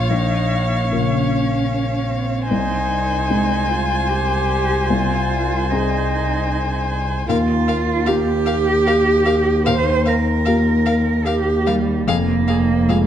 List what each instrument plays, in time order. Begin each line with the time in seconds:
Already playing: double bass A#1, felt piano C#4 F4 A#4, cello F4, viola C#5, violin F5
0.10 felt piano A#1, cello D#4
0.90 felt piano C#3 F4 A#4, cello C#4
2.11 cello C4
2.50 double bass C2, felt piano C2, cello D#4, viola C5, violin G#5
3.30 felt piano G#3 C4 D#4
3.70 cello F4
4.10 cello G4
4.90 felt piano C2, cello F4
5.70 felt piano C4 D#4 G#4, cello D#4
7.28 felt piano D#2, double bass D#2, cello F4, viola A#4, violin F5
7.68 viola A#4, violin F5
8.06 felt piano A#3 F4 G4, cello G4, viola A#4, violin F5
8.46 viola A#4, violin F5
8.86 viola A#4, violin F5
9.25 viola A#4, violin F5
9.66 felt piano D#2, viola A#4, cello C5, violin F5
10.05 viola A#4, cello A#4, violin F5
10.45 felt piano A#3 F4 G4, viola A#4, violin F5
10.86 viola A#4, violin F5
11.26 cello G4, viola A#4, violin F5
11.66 cello G3, viola A#4, violin F5
12.07 double bass F1, felt piano F2, cello A#3, viola G#4, violin F5
12.48 viola G#4, violin F5
12.89 felt piano G#3 F4 G#4, viola G#4, violin F5